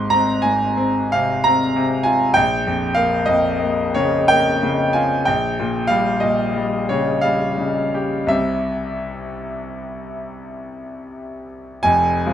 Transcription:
grand piano
Already playing: G#1 G#2 C6
0.10 C4 A#5
0.42 G#2 G#5
0.77 C4
1.12 C3 F5
1.44 C4 A#5
1.76 C3
2.03 F4 G#5
2.34 A#1 G5
2.67 F2
2.95 A#3 F5
3.26 F2 D#5
3.61 A#3
3.94 C#3 C#5
4.28 A#3 G5
4.63 C#3
4.93 F4 G#5
5.25 A#1 G5
5.59 A#2
5.87 G3 F5
6.20 A#2 D#5
6.56 G3
6.89 C#3 C#5
7.21 G3 F5
7.58 C#3
7.94 G4
8.27 C2 C3 G3 G4 E5
11.83 F1 F2 G#5
12.26 C3 G#3 F4

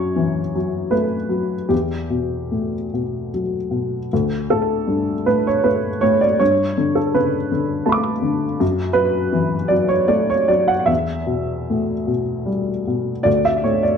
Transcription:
upright piano
Already playing: F#2 F#3 C#5
0.16 E3
0.55 F#3
0.91 A3 B4
1.29 F#3
1.69 E2 G4
2.10 B2
2.51 A2
2.93 B2
3.34 F#3
3.71 B2
4.13 D2
4.50 A2 A4
4.87 G2
5.26 A2 B4
5.47 C#5
5.64 A3 B4
6.01 A2 C#5
6.21 D5
6.39 G2 C#5
6.77 D3
6.95 A4
7.14 C#3 B4
7.51 D3
7.86 A3 A5 B5
7.92 D6
8.22 D3
8.60 F#2
8.93 F#3 B4
9.32 E3
9.68 F#3 D5
9.88 C#5
10.08 A3 D5
10.30 C#5
10.48 F#3 D5
10.68 F#5
10.86 E2 E5
11.26 B2
11.70 A2
12.07 B2
12.46 G3
12.87 B2
13.23 D2 D5
13.45 E5
13.64 A2 C#5
13.83 D5

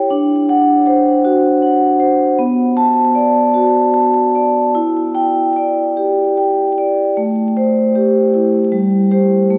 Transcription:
vibraphone
Already playing: G4 C#5 G5
0.10 D4
0.49 F#5
0.87 C5
1.25 F#4
1.62 F#5
2.00 C5
2.39 B3
2.77 A5
3.15 D5
3.54 F#4
3.94 A5
4.35 D5
4.75 E4
5.15 G5
5.56 D5
5.97 G4
6.37 G5
6.78 D5
7.17 A3
7.57 C5
7.95 G4
8.34 E4
8.72 G3
9.11 G4 C5
9.50 A3

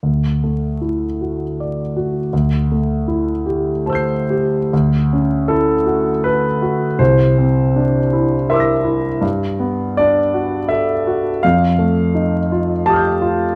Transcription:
grand piano
0.03 D2
0.44 A3
0.81 E4
1.21 F#4
1.60 D5
1.97 F#4
2.33 D2
2.72 A3
3.08 E4
3.46 G4
3.86 C5 A5 E6
3.93 G6 C7
4.30 G4
4.73 D2
5.13 C#4
5.48 E4 A4
5.86 F#4
6.24 A4 B4
6.62 F#4
6.99 C2 C5
7.38 C4
7.76 D4
8.13 E4
8.50 A#4 E5 C6 D6
8.56 E6
8.60 A#6
8.84 E4
9.21 G2
9.60 B3
9.97 D4 D5
10.34 F#4
10.69 A4 E5
11.07 F#4
11.43 F2 F5
11.79 A3
12.15 D#4
12.52 F4
12.86 G4 A5
12.90 D#6 F6
12.96 G6
13.22 F4

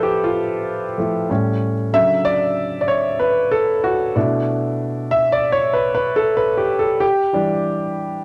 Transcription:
grand piano
Already playing: F3 A3 E4 A4 B4 C5
0.03 G4
0.24 F4
0.98 F3 A3 E4
1.30 A2 G3 C#4
1.93 C#3 D3 F#3 E5
2.25 D5
2.81 D5
2.88 C#5
3.19 B4
3.51 A4
3.84 F#4
4.16 B2 A3 D4 E4
5.11 E5
5.32 D5
5.52 C#5
5.73 B4
5.95 B4
6.16 A4
6.37 B4
6.57 G4
6.79 A4
7.00 G4
7.33 E3 G3 D4

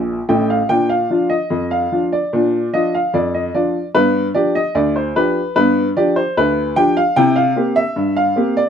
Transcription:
upright piano
Already playing: A#1 A#2
0.29 A1 A2 G5
0.50 F5
0.69 A#2 D4 G5
0.89 F5
1.10 F3 D4 F4
1.30 D#5
1.50 F2
1.71 F5
1.92 F3 D4 F4
2.12 D5
2.33 A#2 D4
2.73 F3 D4 F4 D#5
2.94 F5
3.14 F2 D5
3.34 D#5
3.54 F3 D4 F4 D5
3.95 G2 B3 B4
4.34 F3 D4 G4 D5
4.55 D#5
4.75 D2 D5
4.96 C5
5.16 F3 D4 G4 B4
5.56 G2 B3 B4
5.97 F3 D4 G4 D5
6.16 C5
6.37 D2 B4
6.76 F3 D4 G4 G5
6.97 F5
7.16 C3 E4 G5
7.36 F5
7.56 A#3 C4 G4
7.76 E5
7.96 G2
8.16 F5
8.36 A#3 C4 G4
8.57 D5

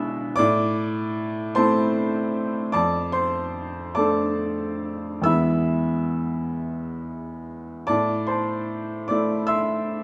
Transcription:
upright piano
Already playing: G#3 D4 E4 E5 B5 E6
0.36 A2 D5 D6
1.55 A3 C4 E4 C5 A5 C6
2.72 F2 D5 A5 D6
3.12 C5 C6
3.95 A3 D4 A4 D5 A5 D6
5.22 E2 G#3 B3 E5 B5 E6
5.26 E4
7.87 A2 D5 A5 D6
8.27 C5 A5 C6
9.08 A3 E4 D5 D6
9.47 E5 C6 E6

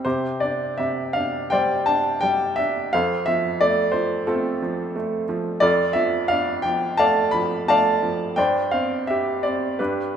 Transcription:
upright piano
0.05 C3 G4 C5
0.40 D4 D5
0.78 C3 E5
1.13 D4 F5
1.50 G3 C5 D5 G5
1.86 D4 A5
2.21 G3 G5
2.56 D4 E5
2.93 F2 A4 C5 F5
3.26 F3 E5
3.61 A3 D5
3.92 F3 C5
4.27 A3 C4 F4 A4
4.62 F3
4.96 A3
5.29 F3
5.60 F2 F4 A4 D5
5.93 F3 E5
6.28 D4 F5
6.62 F3 G5
6.97 A3 D5 F5 A5
7.31 F3 B5
7.68 A3 D5 F5 A5
8.03 F3
8.36 G2 C5 D5 G5
8.71 C4 F5
9.07 G4 E5
9.43 C4 D5
9.79 G2 D4 G4 B4

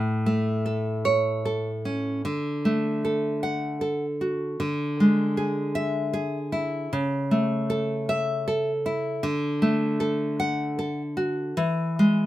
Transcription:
nylon-string guitar
Already playing: A2
0.26 A3
0.66 A4
1.05 C#5
1.45 A4
1.85 C#4
2.25 D3
2.65 A3
3.05 A4
3.43 F#5
3.81 A4
4.21 F#4
4.60 D3
5.00 G#3
5.37 G#4
5.75 E5
6.13 G#4
6.52 E4
6.93 C#3
7.31 A3
7.70 A4
8.09 E5
8.48 A4
8.86 E4
9.23 D3
9.62 A3
10.00 A4
10.40 F#5
10.79 A4
11.17 F#4
11.57 E3
11.99 G#3

